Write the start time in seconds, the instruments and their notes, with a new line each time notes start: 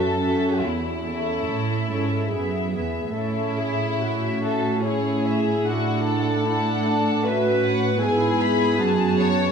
Already playing: cello section F#2, viola section C#4 F#4, violin section A4 E5
0.19 viola section C#4 F#4, violin section E5
0.62 cello section E2, violin section E4
1.05 viola section C#4 A4, violin section E5
1.48 cello section A2
1.90 cello section G#2, viola section C#4 A4, violin section E5
2.33 cello section F#2, viola section B3 G#4, violin section E5
2.75 cello section E2, viola section B3 G#4, violin section E5
3.17 cello section A2, viola section C#4 A4, violin section E4 E5
3.59 viola section G#4
4.01 viola section C#4 F#4
4.43 violin section A4
4.83 viola section E4, violin section G#4 C#5
5.26 violin section E5
5.66 cello section A2, viola section D4, violin section F#4 F#5
6.08 violin section A4
6.47 viola section D4 E4, violin section F#5
6.87 viola section D4
7.25 viola section C#4 F#4, violin section B4 E5
7.65 violin section F#5
8.01 cello section G#2, viola section B3 E4, violin section G#4 G#5
8.41 violin section B5
8.80 cello section F#2, viola section F#4, violin section A5
9.21 violin section C#5